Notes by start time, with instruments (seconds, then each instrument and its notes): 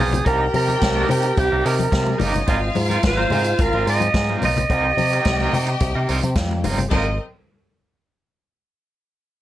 Already playing: clean electric guitar C4, alto saxophone G#4
0.00 picked electric bass B1, clean electric guitar F4 A#4
0.13 muted clean electric guitar stroke, closed hi-hat, low conga
0.25 picked electric bass C2, clean electric guitar D#4 G4 A#4, string section G4 G5, alto saxophone A#4, kick, closed hi-hat
0.40 muted clean electric guitar stroke, muted conga
0.53 picked electric bass C3, alto saxophone A#4, muted clean electric guitar stroke, open hi-hat, high conga
0.67 clean electric guitar D#4 G4 A#4, closed hi-hat, high conga
0.80 picked electric bass C2, muted clean electric guitar stroke, kick, snare, closed hi-hat, muted conga
0.95 clean electric guitar D#4 G4 A#4, muted conga
1.08 picked electric bass C3, clean electric guitar D#4 G4 A#4, open hi-hat, low conga
1.23 muted clean electric guitar stroke, closed hi-hat
1.37 picked electric bass C2, alto saxophone G4, muted clean electric guitar stroke, kick, closed hi-hat, muted conga
1.52 picked electric bass C2, clean electric guitar D#4 G4 A#4
1.64 picked electric bass C3, clean electric guitar D#4 G4 A#4, alto saxophone A#4, open hi-hat
1.79 muted clean electric guitar stroke, closed hi-hat, high conga
1.92 picked electric bass C3, muted clean electric guitar stroke, kick, snare, closed hi-hat, muted conga
2.00 string section F3 F4
2.06 string section G3 G4, muted clean electric guitar stroke, muted conga
2.14 string section G#3 G#4
2.18 picked electric bass G1, string section A#3 A#4, clean electric guitar D#4 G4 A#4, alto saxophone D#5, open hi-hat, high conga, low conga
2.27 string section C4 C5
2.33 string section C#4 C#5, muted clean electric guitar stroke, closed hi-hat, low conga
2.41 string section D#4 D#5
2.47 picked electric bass G#1, clean electric guitar C4 F4 A#4, string section F4 F5, kick, closed hi-hat, muted conga
2.61 muted clean electric guitar stroke
2.75 picked electric bass G#2, muted clean electric guitar stroke, open hi-hat, high conga
2.89 clean electric guitar C4 F4 A#4, closed hi-hat, high conga
3.03 picked electric bass G#1, muted clean electric guitar stroke, kick, snare, closed hi-hat, muted conga
3.07 alto saxophone C5
3.17 clean electric guitar C4 F4 A#4, muted conga
3.30 picked electric bass G#2, clean electric guitar C4 F4 A#4, open hi-hat, low conga
3.44 muted clean electric guitar stroke, closed hi-hat
3.58 picked electric bass G#1, alto saxophone A#4, muted clean electric guitar stroke, kick, closed hi-hat
3.73 picked electric bass G#1, clean electric guitar C4 F4 A#4, muted conga
3.86 picked electric bass G#2, clean electric guitar C4 F4 A#4, alto saxophone D#5, open hi-hat
4.00 muted clean electric guitar stroke, closed hi-hat, high conga
4.14 picked electric bass G#2, muted clean electric guitar stroke, kick, snare, closed hi-hat, muted conga
4.29 clean electric guitar C4 F4 A#4, muted conga
4.42 picked electric bass B1, clean electric guitar C4 F4 A#4, alto saxophone D#5, open hi-hat, high conga, low conga
4.57 muted clean electric guitar stroke, closed hi-hat, low conga
4.69 picked electric bass C2, clean electric guitar C4 D#4 A#4, string section G4 G5, kick, closed hi-hat
4.85 muted clean electric guitar stroke, muted conga
4.97 picked electric bass C3, muted clean electric guitar stroke, open hi-hat, high conga
5.13 clean electric guitar C4 D#4 A#4, closed hi-hat
5.25 picked electric bass C2, muted clean electric guitar stroke, kick, snare, closed hi-hat
5.40 clean electric guitar C4 D#4 A#4, muted conga
5.53 picked electric bass C3, clean electric guitar C4 D#4 A#4, open hi-hat, low conga
5.66 muted clean electric guitar stroke, closed hi-hat
5.80 picked electric bass C2, muted clean electric guitar stroke, kick, closed hi-hat
5.95 picked electric bass C3, clean electric guitar C4 D#4 A#4
6.09 picked electric bass C2, clean electric guitar C4 D#4 A#4, open hi-hat
6.23 picked electric bass C3, muted clean electric guitar stroke, closed hi-hat, high conga
6.35 picked electric bass F2, muted clean electric guitar stroke, kick, snare, closed hi-hat, muted conga
6.51 muted clean electric guitar stroke, muted conga
6.64 picked electric bass G1, clean electric guitar C4 D#4 A#4, open hi-hat, high conga, low conga
6.78 muted clean electric guitar stroke, closed hi-hat, low conga
6.91 picked electric bass G#1, string section C4 A#4 D#5, clean electric guitar C4 F4 A#4, alto saxophone D#5, kick, crash, high conga